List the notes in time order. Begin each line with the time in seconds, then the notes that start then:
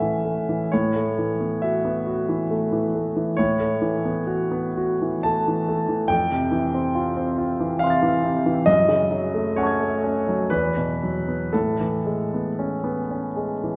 Already playing: A2 E3 A3 C#4 E4 E5 F#5
0.02 E3
0.25 A3
0.49 E3
0.72 A2 C#5
0.96 A3
1.19 E3
1.40 B3
1.62 F#4 E5
1.85 B3
2.07 F#4
2.29 E3
2.50 A3
2.72 E3
2.95 A3
3.17 E3
3.37 A2 C#5
3.60 A3
3.82 E3
4.05 B3
4.27 F#4
4.51 B3
4.77 F#4
5.02 E3
5.23 A3 A5
5.48 E3
5.68 A3
5.89 E3
6.08 F2 G5
6.32 C3
6.52 E3
6.74 C4
6.95 F4
7.17 C4
7.38 F4
7.60 E3
7.79 C3 E5 F5
7.84 C6 F6
7.90 A6
8.03 E3
8.24 C3
8.46 E3
8.66 F#2 D#5
8.89 C#3
9.11 F#3
9.34 A3
9.56 C#4 C#5 F#5
9.61 A5 C#6
9.67 G#6
9.80 A3
10.04 C#4
10.28 F#3
10.50 E2 B4
10.77 B2
11.03 F#3
11.28 B3
11.53 A2 A4
11.80 E3
12.06 G#3
12.34 B3
12.59 C#4
12.84 B3
13.11 C#4
13.36 G#3
13.64 E3